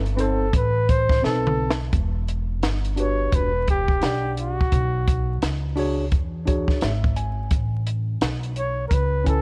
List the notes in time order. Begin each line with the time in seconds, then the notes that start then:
Already playing: G1
0.06 closed hi-hat
0.16 C4 D#4 A4 B4, closed hi-hat
0.21 A4 C5
0.53 A1 B4, kick, closed hi-hat
0.89 C5, kick, closed hi-hat
1.09 kick, snare
1.22 B1 C4 D#4 A4 B4, snare
1.47 mid tom
1.70 snare
1.93 E1, kick, closed hi-hat
2.28 closed hi-hat
2.63 G1, snare, closed hi-hat
2.85 closed hi-hat
2.96 D4 F#4 G4 B4, closed hi-hat
3.00 C#5
3.32 E1 B4, kick, closed hi-hat
3.68 G4, kick, closed hi-hat
3.88 kick
4.01 B1 D4 G4 D5 F#5, snare, closed hi-hat
4.37 F#4, closed hi-hat
4.61 kick
4.72 B1, kick, closed hi-hat
5.08 kick, closed hi-hat
5.42 C#2, snare, closed hi-hat
5.76 D4 F#4 G#4 C#5, open hi-hat
6.12 E2, kick, closed hi-hat
6.45 D4 F#4 G#4 C#5, kick, closed hi-hat
6.68 muted upright bass stroke, kick, snare
6.81 G#1 E5, snare, closed hi-hat
7.04 kick
7.17 G#5, closed hi-hat
7.51 A1, kick, closed hi-hat
7.87 closed hi-hat
8.21 B1, snare, closed hi-hat
8.43 closed hi-hat
8.56 C#5, closed hi-hat
8.88 C#2 A#4, kick, closed hi-hat
8.93 B4
9.24 C#4 E4 B4 G#5, kick, closed hi-hat
9.28 A4